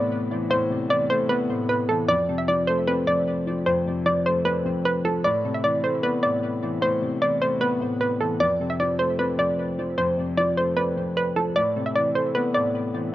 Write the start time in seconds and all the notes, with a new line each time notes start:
Already playing: A2 C3 E3 A3 B3 D5
0.31 E3
0.50 A2 C5
0.70 C3
0.89 E3 D5
1.10 A3 C5
1.29 B3 B4
1.49 A2
1.69 B4
1.89 E3 A4
2.08 F2 D5
2.28 C3
2.38 E5
2.48 F3 D5
2.67 A3 C5
2.87 C4 B4
3.07 F2 D5
3.47 F3
3.66 F2 C5
3.86 C3
4.06 F3 D5
4.26 A3 C5
4.45 C4 B4
4.65 F2
4.85 B4
5.05 F3 A4
5.24 A2 D5
5.45 C3
5.54 E5
5.64 E3 D5
5.84 A3 C5
6.03 B3 B4
6.23 A2 D5
6.62 E3
6.82 A2 C5
7.02 C3
7.21 E3 D5
7.41 A3 C5
7.61 B3 B4
7.81 A2
8.01 B4
8.21 E3 A4
8.40 F2 D5
8.60 C3
8.70 E5
8.80 F3 D5
8.99 A3 C5
9.19 C4 B4
9.38 F2 D5
9.78 F3
9.98 F2 C5
10.18 C3
10.37 F3 D5
10.57 A3 C5
10.77 C4 B4
10.97 F2
11.17 B4
11.36 F3 A4
11.56 A2 D5
11.76 C3
11.86 E5
11.95 E3 D5
12.15 A3 C5
12.35 B3 B4
12.54 A2 D5
12.94 E3